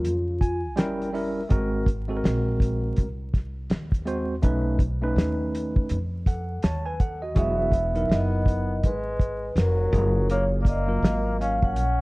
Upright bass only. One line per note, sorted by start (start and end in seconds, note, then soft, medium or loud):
0.04 0.77 F2 medium
0.77 1.47 G1 medium
1.51 2.20 G#1 loud
2.24 2.94 A#1 medium
2.98 3.67 C2 medium
3.70 4.40 D#2 medium
4.43 5.13 B1 loud
5.16 5.86 D#2 medium
5.90 6.60 F2 medium
6.64 7.33 D#2 medium
7.36 8.06 E1 loud
8.09 8.84 F#1 medium
8.84 9.53 G#1 loud
9.56 9.90 F1 medium
9.92 10.98 F#1 loud
11.02 11.75 G#1 medium
11.75 12.01 A#1 loud